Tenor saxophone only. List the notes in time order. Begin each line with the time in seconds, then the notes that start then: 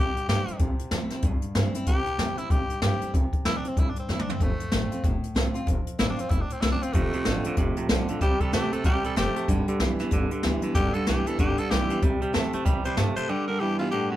Already playing: G4
0.29 G4
1.87 G4
2.37 E4
2.50 G4
2.82 G4
3.46 E4
3.57 D4
3.68 C4
3.79 E4
3.90 D4
3.99 C4
4.10 E4
4.21 D4
4.31 C4
4.43 A3
5.99 E4
6.09 D4
6.20 C4
6.29 E4
6.41 D4
6.52 C4
6.61 E4
6.72 D4
6.82 C4
6.93 A3
8.22 G4
8.40 A4
8.53 G4
8.73 A4
8.85 G4
9.05 A4
9.18 G4
10.75 G4
10.94 A4
11.08 G4
11.27 A4
11.39 G4
11.59 A4
11.71 G4
12.85 C5
13.16 C5
13.30 G4
13.47 A#4
13.60 G4
13.79 F4
13.90 G4
14.10 F#4